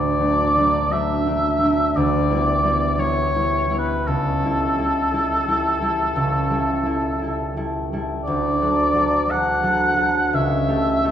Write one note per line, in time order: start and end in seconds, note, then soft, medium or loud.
0.00 1.95 D2 soft
0.00 0.19 F#3 soft
0.00 0.19 A3 soft
0.00 0.20 D4 soft
0.00 2.00 F#4 soft
0.00 0.94 D5 medium
0.20 0.56 F#3 soft
0.20 0.56 A3 soft
0.20 0.57 D4 soft
0.57 0.90 F#3 soft
0.57 0.91 A3 soft
0.57 0.91 D4 soft
0.91 1.25 F#3 soft
0.91 1.26 A3 soft
0.91 1.27 D4 soft
0.91 1.97 E5 medium
1.27 1.59 F#3 soft
1.27 1.60 A3 soft
1.27 1.60 D4 soft
1.60 2.00 F#3 soft
1.60 2.00 A3 soft
1.60 4.12 D4 soft
1.96 4.12 D2 medium
1.96 3.01 D5 medium
2.30 2.63 G3 soft
2.30 2.63 B3 soft
2.30 2.64 E4 soft
2.64 2.97 G3 soft
2.64 2.98 B3 soft
2.64 2.98 E4 soft
2.98 3.34 G3 soft
2.98 3.34 B3 soft
2.98 3.34 E4 soft
2.98 3.77 C#5 medium
3.35 3.69 G3 soft
3.35 3.69 B3 soft
3.35 3.70 E4 soft
3.70 4.42 G3 soft
3.70 4.12 B3 soft
3.70 4.44 E4 soft
3.78 4.08 B4 medium
4.07 6.15 C#2 soft
4.07 7.73 A4 medium
4.43 4.77 G3 soft
4.43 4.78 E4 soft
4.47 4.78 A4 soft
4.78 5.12 G3 soft
4.78 5.13 E4 soft
4.78 5.13 A4 soft
5.13 5.47 G3 soft
5.13 5.47 E4 soft
5.13 5.48 A4 soft
5.48 5.80 G3 soft
5.48 5.81 E4 soft
5.48 5.81 A4 soft
5.82 6.49 G3 soft
5.82 6.49 E4 soft
5.82 6.49 A4 soft
6.16 8.29 C#2 soft
6.50 6.84 G3 soft
6.50 6.85 E4 soft
6.50 6.86 A4 soft
6.85 7.19 G3 soft
6.85 7.20 E4 soft
6.85 7.21 A4 soft
7.19 7.56 G3 soft
7.19 7.56 E4 soft
7.24 7.56 A4 soft
7.57 7.92 G3 soft
7.57 7.92 E4 soft
7.57 7.92 A4 soft
7.93 8.31 G3 soft
7.93 8.31 E4 soft
7.93 8.62 A4 soft
8.24 10.39 D2 medium
8.24 9.32 D5 medium
8.62 8.94 F#3 soft
8.62 8.94 F#4 soft
8.62 8.96 A4 soft
8.95 9.28 F#3 soft
8.95 9.29 F#4 soft
8.95 9.29 A4 soft
9.29 9.62 F#3 soft
9.29 9.63 F#4 soft
9.29 9.63 A4 soft
9.29 10.36 F#5 medium
9.63 9.96 F#3 soft
9.63 9.96 F#4 soft
9.63 9.97 A4 soft
9.97 10.37 F#3 soft
9.97 10.37 F#4 soft
9.97 10.68 A4 soft
10.33 11.11 C#2 medium
10.33 11.11 E5 medium
10.68 11.03 A3 soft
10.68 11.03 G4 soft
10.68 11.04 A4 soft
11.03 11.11 A3 soft
11.03 11.11 G4 soft
11.03 11.11 A4 soft